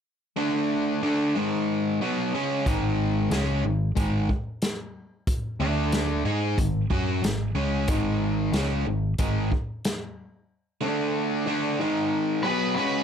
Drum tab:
HH |--------|x-x-x-x-|x-x-x-x-|x-x-x-x-|
SD |--------|--o---o-|--o---o-|--o---o-|
BD |--------|o---oo--|o---oo--|o---oo--|

HH |--------|
SD |--------|
BD |--------|